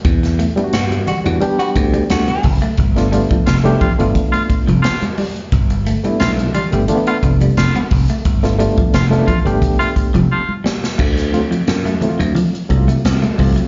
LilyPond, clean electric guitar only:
\new Staff \with { instrumentName = "Clean electric guitar" } { \clef bass \time 4/4 \key g \major \tempo 4 = 88 r8 a16 g16 r8 g16 r8 b16 r16 g16 r16 b16 r16 a16 | r8 g16 f16 r8 f16 r8 a16 r16 f16 r8 g16 r16 | r8 a16 g16 r8 g16 r8 b16 r16 g16 r16 b16 r16 a16 | r8 g16 f16 r8 f16 r8 a16 r16 f16 r8 g16 r16 |
a16 r8 eis16 r16 a16 r16 fis16 eis16 r8 a16 r16 a16 r16 fis16 | }